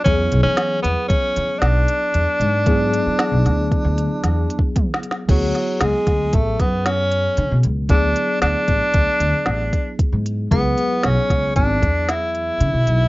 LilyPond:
<<
  \new Staff \with { instrumentName = "Tine electric piano" } { \time 5/4 \key d \lydian \tempo 4 = 115 <fis b e' gis'>1~ <fis b e' gis'>4 | <fis b e' gis'>1~ <fis b e' gis'>4 | <fis b e' gis'>1~ <fis b e' gis'>4 | <fis b e' gis'>1~ <fis b e' gis'>4 |
<fis b e' gis'>1~ <fis b e' gis'>4 | }
  \new Staff \with { instrumentName = "Tenor saxophone" } { \time 5/4 \key d \lydian cis'8. cis'8. b8 cis'4 d'2~ | d'1 r4 | fis4 gis4 a8 b8 cis'4. r8 | d'4 d'2. r4 |
b4 cis'4 d'4 e'2 | }
  \new Staff \with { instrumentName = "Upright bass" } { \clef bass \time 5/4 \key d \lydian e,8 b,,16 e8. e,16 r16 e16 r16 e16 r16 b,,8 r8 e,16 r16 gis,8~ | gis,8. e8 b,,16 d,8. d,8 r16 e,8 r4. | d,8 r8 cis,16 r16 d,8 a,,8 fis,4. d16 b,16 cis,8 | d,8 r8 d,16 r16 a,,16 r16 d,16 r16 d,16 r16 a,,8 r8. gis,8. |
cis,8 r8 b,,16 r16 cis,8 gis,,8 e,4. cis16 b,16 b,,8 | }
  \new DrumStaff \with { instrumentName = "Drums" } \drummode { \time 5/4 <hh bd>8 hh8 <hh sn>8 hh8 <hh bd>8 hh8 <hh sn>8 hh8 hh8 hh8 | <hh bd>8 hh8 <hh sn>8 <hh sn>8 <hh bd>8 hh8 \tuplet 3/2 { <hh sn>16 r16 r16 hh16 bd16 r16 <hh bd toml>16 r16 sn16 hh16 sn16 r16 } | <cymc hh bd>8 <hh sn>8 <hh sn>8 <hh bd sn>8 <hh bd>8 <hh bd sn>8 <hh sn>8 hh8 hh8 hh8 | <hh bd>8 hh8 <hh sn>8 <hh bd>8 <hh bd>8 hh8 <hh sn>8 <hh bd>8 <hh bd>8 hh8 |
<hh bd>8 hh8 <hh sn>8 <hh bd sn>8 <hh bd>8 <hh bd>8 <hh sn>8 hh8 hh8 hh8 | }
>>